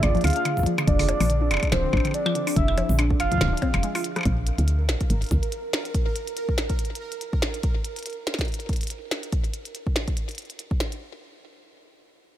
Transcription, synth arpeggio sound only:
0.15 0.22 F3 loud
0.24 0.33 D3 medium
0.36 0.45 D4 medium
0.45 0.54 D3 medium
0.66 0.75 F3 loud
0.78 0.85 D3 medium
0.87 0.99 D4 medium
0.99 1.06 D3 medium
1.20 1.27 F3 loud
1.30 1.39 D3 medium
1.41 1.50 D4 medium
1.51 1.60 D3 medium
1.72 1.81 F3 loud
1.84 1.91 D3 medium
1.93 2.04 D4 medium
2.05 2.12 D3 medium
2.26 2.33 F3 loud
2.35 2.44 D3 medium
2.47 2.56 D4 medium
2.56 2.65 D3 medium
2.78 2.87 F3 loud
2.89 2.96 D3 medium
2.99 3.10 D4 medium
3.11 3.18 D3 medium
3.32 3.39 F3 loud
3.41 3.50 D3 medium
3.53 3.62 D4 medium
3.62 3.71 C4 loud
3.83 3.92 G#3 medium
3.95 4.04 F4 loud
4.16 4.20 F3 loud

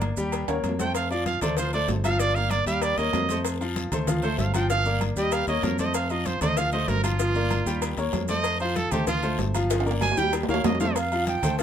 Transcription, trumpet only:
0.80 0.95 G5 loud
0.95 1.10 F5 medium
1.10 1.25 D5 medium
1.26 1.41 F5 medium
1.42 1.57 D5 medium
1.57 1.73 C5 loud
1.74 1.88 D5 loud
2.04 2.21 F5 loud
2.19 2.36 D5 loud
2.35 2.52 F5 medium
2.50 2.66 D5 loud
2.67 2.84 F5 loud
2.82 2.99 D5 medium
2.97 3.43 D#5 loud
4.23 4.38 C5 loud
4.39 4.54 F5 medium
4.54 4.69 G5 medium
4.70 5.00 F5 loud
5.17 5.34 D#5 loud
5.33 5.48 F5 loud
5.48 5.65 D#5 medium
5.64 5.78 A#4 medium
5.79 5.94 D#5 medium
5.95 6.12 F5 medium
6.10 6.27 D#5 medium
6.26 6.41 C5 medium
6.41 6.58 D#5 loud
6.57 6.72 F5 loud
6.72 6.90 D#5 medium
6.88 7.03 A#4 loud
7.03 7.95 F4 loud
8.29 8.60 D#5 loud
8.60 8.78 C5 loud
8.76 8.93 A4 loud
8.91 9.07 G4 medium
9.07 9.38 F4 loud
10.02 10.19 G#5 loud
10.18 10.33 G5 loud
10.49 10.66 F5 medium
10.65 10.80 D#5 medium
10.80 10.95 F5 medium

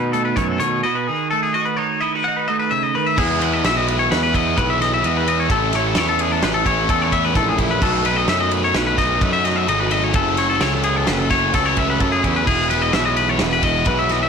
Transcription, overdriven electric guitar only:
3.16 3.63 E3 medium
3.16 3.43 G#3 loud
3.16 3.41 B3 medium
3.16 3.39 E4 loud
3.40 3.64 G#3 medium
3.40 3.64 B3 medium
3.40 3.66 E4 medium
3.63 4.54 E3 medium
3.63 4.35 G#3 medium
3.63 4.33 B3 medium
3.63 4.32 E4 medium
4.32 4.55 G#3 medium
4.32 4.56 B3 medium
4.32 4.57 E4 medium
4.54 5.02 E3 medium
4.54 4.81 G#3 medium
4.54 4.79 B3 loud
4.54 4.78 E4 loud
4.78 5.02 G#3 medium
4.78 5.03 B3 medium
4.78 5.05 E4 medium
5.02 5.48 E3 loud
5.02 5.27 G#3 medium
5.02 5.26 B3 loud
5.02 5.25 E4 loud
5.25 5.49 G#3 medium
5.25 5.49 B3 medium
5.25 5.51 E4 medium
5.48 5.96 A2 medium
5.48 5.95 E3 medium
5.48 5.74 A3 loud
5.48 5.73 C#4 loud
5.48 5.71 E4 loud
5.71 5.96 A3 medium
5.71 5.98 C#4 medium
5.71 5.98 E4 medium
5.95 6.88 E3 medium
5.95 6.68 A3 loud
5.95 6.66 C#4 medium
5.95 6.64 E4 medium
6.65 6.89 A3 medium
6.65 6.90 C#4 medium
6.65 6.90 E4 medium
6.88 7.32 A2 medium
6.88 7.34 E3 medium
6.88 7.14 A3 medium
6.88 7.13 C#4 loud
6.88 7.11 E4 loud
7.11 7.35 A3 medium
7.11 7.35 C#4 medium
7.11 7.36 E4 medium
7.34 7.80 A2 loud
7.34 7.80 E3 loud
7.34 7.60 A3 loud
7.34 7.59 C#4 loud
7.34 7.57 E4 loud
7.57 7.81 A3 medium
7.57 7.82 C#4 medium
7.57 7.83 E4 medium
7.81 8.26 B2 medium
7.81 8.06 F#3 medium
7.81 8.04 A3 loud
7.81 8.02 D#4 loud
8.04 8.27 F#3 medium
8.04 8.29 A3 medium
8.04 8.28 D#4 medium
8.27 9.19 B2 medium
8.27 8.99 F#3 medium
8.27 8.97 A3 medium
8.27 8.95 D#4 loud
8.96 9.21 F#3 medium
8.96 9.21 A3 medium
8.96 9.21 D#4 medium
9.20 9.65 B2 medium
9.20 9.46 F#3 medium
9.20 9.44 A3 loud
9.20 9.42 D#4 loud
9.43 9.68 F#3 medium
9.43 9.68 A3 medium
9.43 9.69 D#4 medium
9.66 10.12 B2 loud
9.66 9.93 F#3 loud
9.66 9.91 A3 loud
9.66 9.89 D#4 loud
9.90 10.14 F#3 medium
9.90 10.14 A3 medium
9.90 10.13 D#4 medium
10.13 10.60 F#2 medium
10.13 10.58 C#3 medium
10.13 10.39 F#3 loud
10.13 10.37 A3 loud
10.13 10.35 C#4 loud
10.36 10.61 F#3 medium
10.36 10.61 A3 medium
10.36 10.62 C#4 medium
10.60 11.53 C#3 medium
10.60 11.32 F#3 medium
10.60 11.31 A3 loud
10.60 11.29 C#4 medium
11.30 11.54 F#3 medium
11.30 11.54 A3 medium
11.30 11.55 C#4 medium
11.53 11.98 F#2 medium
11.53 11.98 C#3 medium
11.53 11.78 F#3 loud
11.53 11.77 A3 loud
11.53 11.75 C#4 medium
11.76 11.99 F#3 medium
11.76 12.00 A3 medium
11.76 12.01 C#4 medium
11.99 12.45 F#2 medium
11.99 12.45 C#3 loud
11.99 12.24 F#3 loud
11.99 12.23 A3 loud
11.99 12.21 C#4 loud
12.22 12.46 F#3 medium
12.22 12.46 A3 medium
12.22 12.45 C#4 medium
12.45 12.91 E3 medium
12.45 12.71 G#3 loud
12.45 12.69 B3 loud
12.45 12.68 E4 loud
12.68 12.92 G#3 medium
12.68 12.92 B3 medium
12.68 12.94 E4 medium
12.91 13.84 E3 medium
12.91 13.64 G#3 medium
12.91 13.62 B3 medium
12.91 13.61 E4 medium
13.61 13.84 G#3 medium
13.61 13.85 B3 medium
13.61 13.87 E4 medium
13.85 14.29 E3 medium
13.85 14.10 G#3 loud
13.85 14.08 B3 loud
13.85 14.07 E4 loud
14.08 14.29 G#3 soft
14.08 14.29 B3 medium
14.08 14.29 E4 medium

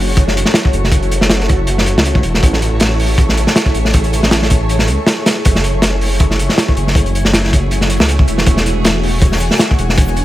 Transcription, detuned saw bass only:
0.00 0.44 F#1 medium
0.73 1.20 F#1 loud
1.21 1.66 F#1 medium
1.68 1.95 F#1 medium
1.97 2.23 C#2 loud
2.24 2.41 E1 medium
2.43 2.71 A1 loud
2.72 3.46 A1 medium
3.75 4.21 A1 loud
4.23 4.90 A1 medium
4.88 4.98 C#2 loud
5.46 5.73 F#1 loud
5.74 6.48 F#1 medium
6.77 7.23 F#1 loud
7.25 7.70 F#1 medium
7.71 7.99 F#1 medium
8.00 8.27 C#2 loud
8.28 8.45 E1 medium
8.47 8.74 E1 loud
8.76 9.50 E1 medium
9.79 10.25 E1 loud

